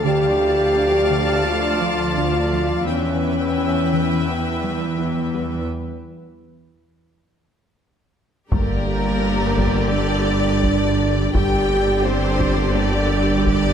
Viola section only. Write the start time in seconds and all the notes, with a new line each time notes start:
0.05 D5 F5
2.88 B4 E5
8.52 D3 G4
11.35 D3 G4